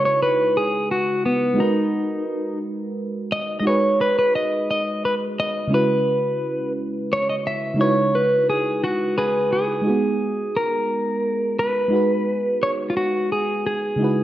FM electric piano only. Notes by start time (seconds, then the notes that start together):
Already playing: C#3 G#3 D#4 E4 F#4 B4
1.54 G#3 D#4
1.58 F#4 A#4 B4
3.61 G#3 D#4 F#4
3.67 G#4 B4
5.68 C#3 G#3 C#4
5.73 E4 F#4 B4
7.74 C#3 G#3 D#4
7.79 E4 F#4 B4
9.82 G#3 D#4 F#4
9.88 B3 G#4
11.88 G#3 D#4 F#4
11.94 G#4 B4
13.96 C#3 G#3 D#4
14.01 E4 F#4 B4